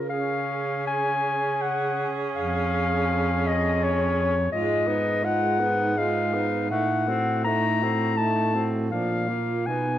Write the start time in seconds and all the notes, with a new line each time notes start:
Already playing: C#3
0.09 C#4 G#4 F5
0.87 G#5
1.62 F#5
2.35 F2 F5
3.47 D#5
3.83 C#5
4.50 G#2 G#3 F4 D#5
4.87 B3 D#4
5.23 G#3 F4 F#5
5.60 B3 D#4
5.97 G#3 F4 F5
6.34 B3 D#4
6.70 A2 A3 D#4 F#5
7.08 C4 F#4
7.44 A3 D#4 A#5
7.81 C4 F#4
8.17 A3 D#4 A5
8.55 C4 F#4
8.91 A#2 F3 D4 F5
9.28 A#3 F4
9.66 B2 B3 D#4 G#5